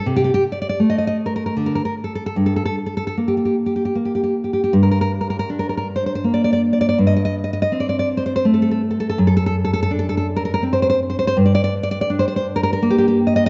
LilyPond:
\new Staff \with { instrumentName = "Nylon-string guitar" } { \time 3/4 \key g \minor \tempo 4 = 81 << { r32 g'32 g'32 g'32 r32 d''32 d''32 d''32 r32 ees''32 ees''32 ees''32 r32 bes'32 bes'32 bes'32 r32 bes'32 bes'32 bes'32 r32 a'32 a'32 a'32 | r32 a'32 a'32 a'32 r32 a'32 a'32 a'32 r32 g'32 g'32 g'32 r32 g'32 g'32 g'32 r32 g'32 g'32 g'32 r32 g'32 g'32 g'32 | r32 bes'32 bes'32 bes'32 r32 bes'32 bes'32 bes'32 r32 bes'32 bes'32 bes'32 r32 c''32 c''32 c''32 r32 d''32 d''32 d''32 r32 d''32 d''32 d''32 | r32 ees''32 ees''32 ees''32 r32 ees''32 ees''32 ees''32 r32 d''32 d''32 d''32 r32 c''32 c''32 c''32 r32 a'32 a'32 a'32 r32 a'32 a'32 a'32 |
r32 a'32 a'32 a'32 r32 a'32 a'32 a'32 r32 a'32 a'32 a'32 r32 bes'32 bes'32 bes'32 r32 c''32 c''32 c''32 r32 c''32 c''32 c''32 | r32 d''32 d''32 d''32 r32 d''32 d''32 d''32 r32 c''32 c''32 c''32 r32 bes'32 bes'32 bes'32 r32 g'32 g'32 g'32 r32 ees''32 ees''32 r32 | } \\ { c8 r8 a4 d8 r8 | g,8 r8 bes4 bes4 | g,4 d'4 bes4 | g,4 c'4 a4 |
fis,4 d'4 c'4 | g,4 d'4 bes4 | } >> }